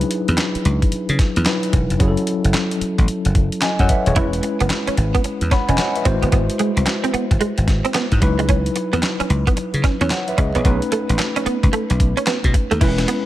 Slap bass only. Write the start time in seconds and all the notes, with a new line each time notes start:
0.28 E2
0.55 muted slap bass stroke
0.65 C#2
0.92 muted slap bass stroke
1.09 C#3
1.37 E2
1.73 E1
1.90 F1
2.00 F#1
2.44 F#1
2.81 muted slap bass stroke
2.98 A1
3.08 muted slap bass stroke
3.25 F#1
3.79 F#2
4.06 D#1
4.16 E1
4.60 F#1
4.88 muted slap bass stroke
4.97 G#1
5.24 muted slap bass stroke
5.41 E2
5.68 E1
6.06 G#1
6.22 G1
6.32 G#1
6.77 C2
7.14 muted slap bass stroke
7.31 G#1
7.41 muted slap bass stroke
7.58 G#1
8.12 G#2
8.22 C#2
8.93 E2
9.20 muted slap bass stroke
9.30 C#2
9.57 muted slap bass stroke
9.74 C#3
10.01 E2
10.38 C#2
10.55 A#1
10.65 B1
11.09 A1
11.46 muted slap bass stroke
11.63 C#2
11.73 muted slap bass stroke
11.90 B1
12.44 B2
12.71 D#2
12.81 E1